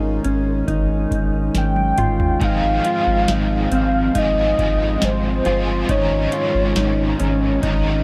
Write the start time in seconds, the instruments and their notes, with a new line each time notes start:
Already playing: analog synth bass G#1, pipe organ D#3 G#3 C#4, clean electric guitar D#4, soft synth lead A#4
0.24 analog synth bass G#1, clean electric guitar C#4, closed hi-hat
0.68 analog synth bass G#1, clean electric guitar D#4, kick, closed hi-hat
1.11 analog synth bass G#1, kick, closed hi-hat
1.55 analog synth bass G#1, soft synth lead G5, snare, closed hi-hat
1.76 high tom
1.98 analog synth bass G1, clean electric guitar F4, closed hi-hat, mid tom
2.20 floor tom
2.40 analog synth bass G#1, overdriven electric guitar G#2 D#3 G#3, pipe organ F3 C4, clean electric guitar D#4, kick, closed hi-hat
2.44 overdriven electric guitar C4 F4 G#4, soft synth lead F5
2.85 clean electric guitar F4, closed hi-hat
3.07 analog synth bass G#1
3.28 analog synth bass G#1, clean electric guitar D#4, snare, closed hi-hat
3.72 analog synth bass G#1, clean electric guitar C4, soft synth lead F5, closed hi-hat
4.14 analog synth bass G#1, overdriven electric guitar G#3 C4 F4, clean electric guitar D#4, kick, closed hi-hat
4.19 overdriven electric guitar G#4, soft synth lead D#5
4.59 analog synth bass G#1, kick, closed hi-hat
5.02 analog synth bass G#1, soft synth lead C5, snare, closed hi-hat
5.45 analog synth bass G1, overdriven electric guitar C4 F4 G#4, clean electric guitar F4, closed hi-hat
5.50 overdriven electric guitar G#3
5.87 analog synth bass G#1, overdriven electric guitar G#2 C#3 G#3, pipe organ D#3 C#4, clean electric guitar D#4, soft synth lead C#5, kick, closed hi-hat
5.92 overdriven electric guitar C#4 D#4 A#4
6.32 clean electric guitar F4, closed hi-hat
6.55 analog synth bass G#1
6.76 analog synth bass G#1, clean electric guitar D#4, snare, closed hi-hat
7.19 analog synth bass G#1, clean electric guitar C#4, closed hi-hat
7.62 analog synth bass G#1, overdriven electric guitar G#3 C#4 D#4, clean electric guitar D#4, kick, closed hi-hat
7.67 overdriven electric guitar A#4